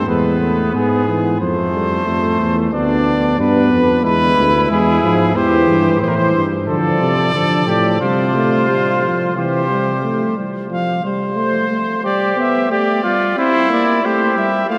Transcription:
0.07 E2 G#3 B3 B4
0.40 A3
0.73 G#2 B3 G#4
1.07 E3
1.40 F2 F3 A3 C5
1.73 G3
2.06 F2 A3
2.40 E2
2.72 D2 B3 D4 D5
3.39 G2 B3 D4 B4
3.71 F2
4.03 E2 G#3 E4 B4
4.37 D2
4.70 E2 G#3 G#4
5.03 G#2 F3
5.35 E2 E3 G4 C5
5.68 G2
6.01 A2 E3 C5
6.08 A#4
6.16 C5
6.34 G2
6.67 D3 F3 A4 D5
7.00 C3
7.34 D3 F3 A4
7.67 A2 G4
8.00 C3 G3 F4 C5
8.35 A3
8.69 G3
9.03 F3
9.36 C3 E3 G4 C5
9.70 G3
10.03 A3
10.37 G3
10.70 F3 F5
11.04 G3 C5
11.36 A3 C5
11.69 A3
12.04 G3 G4 D5
12.36 B3 E5
12.70 A3 G4 D5
13.03 G3 F4
13.37 C4 E4 C5
13.70 A#3 D5
14.03 A3 G4 C5
14.36 G3 E5
14.68 A3 F4 F5

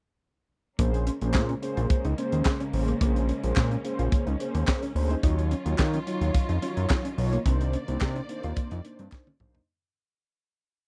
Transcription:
0.79 A#1 C#3 G#3 A#3 C#4 G#4 C5, kick, closed hi-hat
0.94 muted clean electric guitar stroke, closed hi-hat
1.07 C#4, closed hi-hat
1.21 A#1 A#3 C#4 G#4 C5, closed hi-hat
1.34 A#2, kick, snare, clap
1.49 C#4, closed hi-hat
1.62 A#3 C#4 G#4 C5, muted clean electric guitar stroke, closed hi-hat
1.77 A#1 F4, closed hi-hat
1.90 muted clean electric guitar stroke, kick, closed hi-hat
2.05 C#2 D#4, closed hi-hat
2.18 A#3 C#4 G#4 C5, closed hi-hat
2.32 D#2, closed hi-hat
2.45 kick, snare, clap
2.60 C#4, closed hi-hat
2.73 A1 A#3 C#4 G#4 C5, muted clean electric guitar stroke, open hi-hat
2.88 A#3, closed hi-hat
3.01 A#1 A#3 C#4 G#4 C5, kick, closed hi-hat
3.16 muted clean electric guitar stroke, closed hi-hat
3.29 C#4, closed hi-hat
3.43 A#1 A#3 C#4 G#4 C5, closed hi-hat
3.56 A#2, kick, snare, clap
3.71 C#4, closed hi-hat
3.84 A#3 C#4 G#4 C5, muted clean electric guitar stroke, closed hi-hat
3.99 A#1 F4, closed hi-hat
4.12 kick, closed hi-hat
4.27 C#2 D#4, closed hi-hat
4.40 A#3 C#4 G#4 C5, muted clean electric guitar stroke, closed hi-hat
4.55 D#2 A#3, closed hi-hat
4.67 kick, snare, clap
4.83 C#4, closed hi-hat
4.95 D2 A#3 C#4 G#4 C5, muted clean electric guitar stroke, open hi-hat
5.10 D#4, closed hi-hat
5.23 D#2 D#3 F#3 D#4 F4 C#5, kick, closed hi-hat
5.38 muted clean electric guitar stroke, closed hi-hat
5.51 C#4, closed hi-hat
5.65 D#2 F#3 D#4 F4 C#5, closed hi-hat
5.78 D#3, kick, snare, clap
5.94 C#4, closed hi-hat
6.06 F#3 D#4 F4 C#5, muted clean electric guitar stroke, closed hi-hat
6.21 D#2 F4, closed hi-hat
6.34 muted clean electric guitar stroke, kick, closed hi-hat
6.49 F2 D#4, closed hi-hat
6.62 F#3 C#4 D#4 F4 C#5, closed hi-hat
6.77 F#2, closed hi-hat
6.90 kick, snare, clap
7.05 C#4, closed hi-hat
7.17 B1 F#3 D#4 F4 C#5, muted clean electric guitar stroke, open hi-hat
7.33 A#3, closed hi-hat
7.45 C2 C3 A#3 C4 D4 D#4 C5 D5, kick, closed hi-hat
7.61 muted clean electric guitar stroke, closed hi-hat
7.73 C#4, closed hi-hat
7.88 C2 A#3 D4 D#4 C5, closed hi-hat
8.01 C3, kick, snare, clap
8.16 C#4, closed hi-hat
8.28 A#3 D4 D#4 C5, muted clean electric guitar stroke, closed hi-hat
8.43 D#2 F4, closed hi-hat
8.56 kick, closed hi-hat
8.71 F2 D#4, closed hi-hat
8.84 A#3 D4 D#4 C5, muted clean electric guitar stroke, closed hi-hat
8.99 G2 C4, closed hi-hat
9.12 kick, snare, clap
9.27 C#4, high tom
9.40 B1 A#3 D4 D#4 C5, muted clean electric guitar stroke, mid tom
9.55 D#4, floor tom

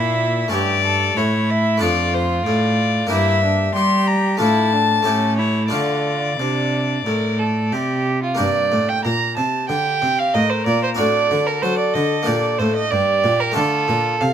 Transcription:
Already playing: A#2 A#3 D4 E4 E5
0.48 A3 C#4 E4
0.52 G2 G4 D5
0.85 A4
1.17 A2 E4 C#5
1.50 E5
1.77 A3 D4 A4
1.82 F2 F4 D5
2.14 C5
2.46 A2 D5
3.07 G2 A#3 D4 E4 G4
3.11 G2 E5
3.44 D4
3.75 G3 G4 C6
4.07 A#5
4.37 A2 A3 D4 E4 F4 A5
4.42 A2
4.73 D4
5.02 A2 A3 C#4 G4
5.07 A2
5.39 E4 C#5
5.68 D3 A3 D4 F4 D5
5.73 D3
6.39 C3 D4
7.06 A2 A#4
7.39 A4
7.73 C3 G4
8.23 F4
8.35 A#3 D4 G4
8.39 G2 D5
8.72 A2
8.89 G5
9.05 A#2 A#5
9.37 C3 A5
9.69 D3 G4 G5
10.02 C3
10.19 F5
10.34 A2 A#4 D#5
10.50 C5
10.66 A#2 D5
10.83 C5
10.95 C4 D4 F#4 D5
10.99 A2 A4
11.31 D3
11.47 A#4
11.62 F#3 C5
11.78 D5
11.94 D3 D#5
12.23 A#3 D4 G4
12.27 A#2 D5
12.58 A2 C5
12.76 D#5
12.90 G2 G4 D5
13.24 A#2
13.40 A#4
13.52 A3 D4 F4
13.56 D3 F4 A4
13.88 A#2
14.20 C3 A4 F5

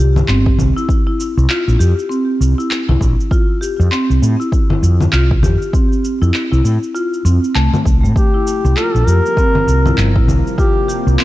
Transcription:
Already playing: C2
0.16 low conga, shaker
0.28 G1 C4, clap, shaker
0.46 kick
0.59 C2, low conga, shaker
0.77 E4, shaker
0.89 kick, shaker
1.07 E4
1.20 shaker
1.37 C2, shaker
1.49 F4, clap, shaker
1.68 A#1, shaker
1.79 F2 G4, shaker
1.99 shaker
2.09 C4, shaker
2.41 C2, shaker
2.58 E4, shaker
2.71 clap, shaker
2.89 C2 E4, low conga
3.01 A#1, kick, shaker
3.20 shaker
3.31 F4, kick, shaker
3.61 G4, shaker
3.80 F2, shaker
3.91 C4, clap, shaker
4.10 C2, shaker
4.22 A2, shaker
4.40 E4, shaker
4.52 kick, shaker
4.70 E4, low conga
4.83 F2, shaker
5.01 low conga, shaker
5.12 C2 F4, clap, shaker
5.31 kick
5.43 F2 G4, low conga, shaker
5.62 shaker
5.73 C4, kick, shaker
5.93 shaker
6.05 shaker
6.22 F2 E4, shaker
6.34 clap, shaker
6.52 C2 E4, shaker
6.64 A2, shaker
6.83 shaker
6.95 F4, shaker
7.14 shaker
7.25 F2 C4, shaker
7.44 shaker
7.55 C2 A3, clap, shaker
7.74 low conga, shaker
7.85 C2, kick, shaker
8.03 A2 A3, shaker
8.16 C3 F3 G3 A#3 G4, kick, shaker
8.34 E4
8.47 shaker
8.65 C2, shaker
8.77 F4 A4, clap, shaker
8.85 A#4
8.93 A#1 A4, shaker
9.07 F2 G4 A#4, shaker
9.26 shaker
9.37 C4, kick, shaker
9.55 low conga
9.67 C2, shaker
9.86 E4, low conga, shaker
9.98 G1, clap, shaker
10.16 E4, kick
10.28 C2, low conga, shaker
10.47 shaker
10.58 F4 G4, kick, shaker
10.88 G4, shaker
11.07 C2, shaker
11.19 C4, clap, shaker

